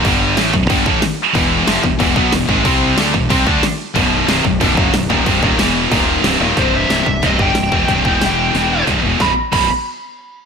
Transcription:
<<
  \new Staff \with { instrumentName = "Lead electric guitar" } { \time 4/4 \tempo 4 = 184 r1 | r1 | r1 | r1 |
r1 | c''8 e''4. dis''8 g''4.~ | g''2. r4 | b''8 r8 b''8 r2 r8 | }
  \new Staff \with { instrumentName = "Distorted electric guitar" } { \clef bass \time 4/4 <g, d g>4 <a, e a>8 <b,, fis,>8 <g, d g>8 <a, e a>8 r4 | <e, b, e>4 <eis, c eis>8 <e, b,>8 <e, b, e>8 <b, fis b>8 <e, b,>8 <gis, dis gis>8 | <c g c'>4 <d a d'>8 <e, b,>8 <c g c'>8 <d a d'>8 r4 | <b,, fis, b,>4 <c, g, c>8 <b,, fis,>8 <b,, fis, b,>8 <fis, cis fis>8 <b,, fis,>8 <dis, ais, dis>8 |
<c, g, c>8 <dis, ais, dis>8 <e, b, e>4 <dis, ais, dis>4 <c, g, c>8 <ees, bes, ees>8 | <c, g, c>4 <c, g, c>8 <c, g,>8 <c, g, c>8 <g, d g>8 <c, g,>8 <e, b, e>8 | <c, g, c>8 <e, b, e>8 <e, b, e>4 <e, b, e>4 <c, g, c>8 <e, b, e>8 | <b,, fis, b,>8 r8 <b,, fis, b,>8 r2 r8 | }
  \new Staff \with { instrumentName = "Distorted electric guitar" } { \clef bass \time 4/4 <g, d g>4 <a, e a>8 <b,, fis,>8 <g, d g>8 <a, e a>8 r4 | <e, b, e>4 <eis, c eis>8 <e, b,>8 <e, b, e>8 <b, fis b>8 <e, b,>8 <gis, dis gis>8 | <c g c'>4 <d a d'>8 <e, b,>8 <c g c'>8 <d a d'>8 r4 | <b,, fis, b,>4 <c, g, c>8 <b,, fis,>8 <b,, fis, b,>8 <fis, cis fis>8 <b,, fis,>8 <dis, ais, dis>8 |
<c, g, c>8 <dis, ais, dis>8 <e, b, e>4 <dis, ais, dis>4 <c, g, c>8 <ees, bes, ees>8 | <c, g, c>4 <c, g, c>8 <c, g,>8 <c, g, c>8 <g, d g>8 <c, g,>8 <e, b, e>8 | <c, g, c>8 <e, b, e>8 <e, b, e>4 <e, b, e>4 <c, g, c>8 <e, b, e>8 | <b,, fis, b,>8 r8 <b,, fis, b,>8 r2 r8 | }
  \new Staff \with { instrumentName = "Distorted electric guitar" } { \clef bass \time 4/4 <g, d g>4 <a, e a>8 <b,, fis,>8 <g, d g>8 <a, e a>8 r4 | <e, b, e>4 <eis, c eis>8 <e, b,>8 <e, b, e>8 <b, fis b>8 <e, b,>8 <gis, dis gis>8 | <c g c'>4 <d a d'>8 <e, b,>8 <c g c'>8 <d a d'>8 r4 | <b,, fis, b,>4 <c, g, c>8 <b,, fis,>8 <b,, fis, b,>8 <fis, cis fis>8 <b,, fis,>8 <dis, ais, dis>8 |
<c, g, c>8 <dis, ais, dis>8 <e, b, e>4 <dis, ais, dis>4 <c, g, c>8 <ees, bes, ees>8 | r1 | r1 | r1 | }
  \new Staff \with { instrumentName = "Fingered electric bass" } { \clef bass \time 4/4 g,,4 a,,8 b,,,8 g,,8 a,,8 r4 | e,,4 eis,,8 e,,8 e,,8 b,,8 e,,8 gis,,8 | c,4 d,8 e,,8 c,8 d,8 r4 | b,,,4 c,,8 b,,,8 b,,,8 fis,,8 b,,,8 dis,,8 |
c,,8 dis,,8 e,,4 dis,,4 c,,8 ees,,8 | c,,4 c,,8 c,,8 c,,8 g,,8 c,,8 e,,8 | c,,8 e,,8 e,,4 e,,4 c,,8 e,,8 | b,,,8 r8 b,,,8 r2 r8 | }
  \new DrumStaff \with { instrumentName = "Drums" } \drummode { \time 4/4 <cymc bd>4 <cymc sn>8 bd8 <cymc bd>8 bd8 <cymc sn>4 | <cymc bd>4 <cymc sn>8 bd8 <cymc bd>8 bd8 <cymc sn>8 bd8 | <cymc bd>4 <cymc sn>8 bd8 <cymc bd>8 bd8 <cymc sn>4 | <cymc bd>4 <cymc sn>8 bd8 <cymc bd>8 bd8 <cymc sn>8 bd8 |
<cymc bd>8 bd8 <cymc sn>4 <cymc bd>4 <cymc sn>8 tommh8 | <hho bd>4 <hho sn>8 bd8 <hho bd>8 bd8 <hho sn>8 bd8 | <hho bd>8 bd8 <hho sn>4 <hho sn>4 <hho bd>8 tomfh8 | <bd sn>4 <cymc bd>4 r4 r4 | }
>>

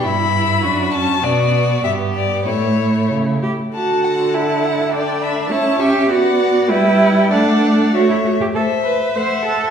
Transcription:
<<
  \new Staff \with { instrumentName = "Violin" } { \time 2/4 \key d \major \tempo 4 = 100 b''4. a''8 | d''4 e''8 d''8 | cis''4 r4 | fis''8 a''8 fis''8 a''8 |
g''8 b''8 a''8 cis'''8 | fis''4 g''4 | fis''4 e''8 r8 | \key a \dorian e''4 fis''4 | }
  \new Staff \with { instrumentName = "Violin" } { \time 2/4 \key d \major e'4 fis'4 | fis'4 g'4 | e'4. r8 | a''8 fis''8 a''8 fis''8 |
d''8 e''8 cis''8 e''8 | d''4 b'4 | d''4 cis''8 r8 | \key a \dorian c''4 e''4 | }
  \new Staff \with { instrumentName = "Cello" } { \time 2/4 \key d \major g,4 fis,4 | b,4 g,4 | a,4 cis8 g'8 | fis'4 e'4 |
d'4 e'8 g'8 | fis'4 e'4 | d'4 fis'16 e'16 fis'16 g'16 | \key a \dorian a'8 b'8 c''8 a'8 | }
  \new Staff \with { instrumentName = "Viola" } { \time 2/4 \key d \major e'4 d'8 cis'8 | b4 b4 | a4. r8 | d2~ |
d4 cis'4 | b4 g4 | a4 a8 r8 | \key a \dorian a4 a4 | }
>>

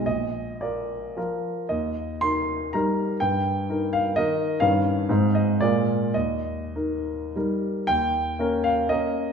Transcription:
\new Staff \with { instrumentName = "Grand piano" } { \time 3/4 \key ees \major \tempo 4 = 116 << { ees''4 d''4 r4 | ees''4 c'''4 bes''4 | g''4. f''8 ees''4 | f''4. ees''8 d''4 |
ees''2 r4 | g''4. f''8 ees''4 | } \\ { bes,,4 <f' bes'>4 <f f' bes'>4 | ees,4 <ees' bes'>4 <g ees' bes'>4 | g,4 <ees' bes'>4 <ees ees' bes'>4 | <g, ees des' bes'>4 <aes, aes c' c''>4 <bes, aes f' bes'>4 |
ees,4 <ees' bes'>4 <g ees' bes'>4 | ees,4 <bes des' bes'>4 <bes des' bes'>4 | } >> }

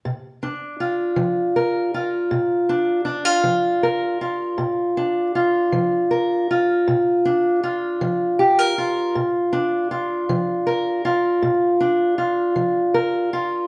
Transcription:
\new Staff \with { instrumentName = "Steel-string acoustic guitar" } { \time 12/8 \key bes \major \tempo 4. = 53 << { r8 d'8 f'4 bes'8 f'4 d'8 d'16 f'8. bes'8 f'8 | r8 d'8 f'4 bes'8 f'4 d'8 f'4 g'16 bes'16 f'8 | r8 d'8 f'4 bes'8 f'4 d'8 f'4 bes'8 f'8 | } \\ { bes,4 r8 f4 r8 bes,4 r8 f4 r8 | bes,4 r8 f4 r8 bes,4 r8 f4 r8 | bes,4 r8 f4 r8 bes,4 r8 f4 r8 | } >> }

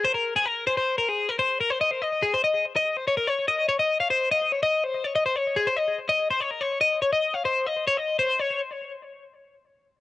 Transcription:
\new Staff \with { instrumentName = "Clean electric guitar" } { \time 4/4 \key des \major \tempo 4 = 144 c''16 bes'8 aes'16 bes'8 c''16 c''8 bes'16 aes'8 bes'16 c''8 bes'16 | c''16 ees''16 c''16 ees''8 aes'16 c''16 ees''8 r16 ees''8 c''16 des''16 bes'16 des''16~ | des''16 ees''8 des''16 ees''8 f''16 c''8 ees''8 des''16 ees''8 c''8 | des''16 ees''16 c''16 des''8 aes'16 c''16 ees''8 r16 ees''8 c''16 des''16 bes'16 des''16~ |
des''16 ees''8 des''16 ees''8 f''16 c''8 ees''8 des''16 ees''8 c''8 | des''8 r2. r8 | }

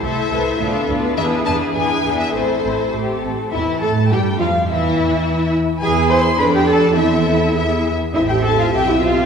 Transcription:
<<
  \new Staff \with { instrumentName = "Violin section" } { \time 2/4 \key a \minor \tempo 4 = 104 e''4. r8 | e''8 a''8 gis''8. e''16 | c''4 r4 | e'8 a'8 g'8 f'8 |
e'4. r8 | b'4 d''4 | e''4 e''8 r8 | e''2 | }
  \new Staff \with { instrumentName = "Violin section" } { \time 2/4 \key a \minor <a' c''>8 <a' c''>8 <f' b'>8 <f' b'>8 | <e' b'>8 <e' b'>8 <e' b'>8 <e' b'>8 | <e' c''>8 <e' c''>8 g'8 a'8 | e''8 a''8 g''8 f''8 |
e''4. r8 | gis''8 c'''8 b''16 g''16 a''8 | e''4. r8 | e''16 g''16 a''16 f''16 g''16 e''16 f''8 | }
  \new Staff \with { instrumentName = "Cello section" } { \time 2/4 \key a \minor a'8 b'8 a'4 | gis'4 gis'4 | a'4. r8 | e'8 a'8 g'8 f'8 |
e'4. r8 | gis'8 c''8 b'16 g'16 a'8 | e'4. r8 | e'16 g'16 a'16 f'16 g'16 e'16 f'8 | }
  \new Staff \with { instrumentName = "Viola section" } { \time 2/4 \key a \minor <a e'>8 <a e'>8 <b d'>8 <b d'>8 | <b d'>8 <b d'>8 <b d'>8 <b d'>8 | <a c'>8 <a c'>8 <a c'>8 <a c'>8 | e8 a8 g8 f8 |
e4. r8 | <e' gis'>4 <d' a'>4 | <c' a'>4 <b gis'>8 r8 | <c' a'>4 <c' g'>4 | }
  \new Staff \with { instrumentName = "Double bass section" } { \clef bass \time 2/4 \key a \minor c,8 c,8 d,8 d,8 | e,8 e,8 e,8 e,8 | a,,8 a,,8 a,,8 a,,8 | e,8 a,8 g,8 f,8 |
e,4. r8 | e,4 f,4 | e,4 e,8 r8 | a,,4 b,,4 | }
>>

